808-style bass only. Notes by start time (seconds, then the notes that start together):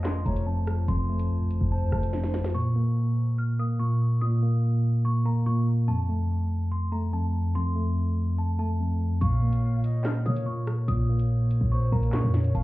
0.05 A1
0.15 F1
0.26 F1
0.88 F1
1.30 A2
1.45 F1
1.61 F1
1.82 F2
1.92 F1
2.34 A1
9.21 A#1
9.63 A1
9.74 A#1
10.26 A#2
10.88 A#1
11.61 A#1
11.92 A#1
12.13 A#2
12.24 F2
12.55 F1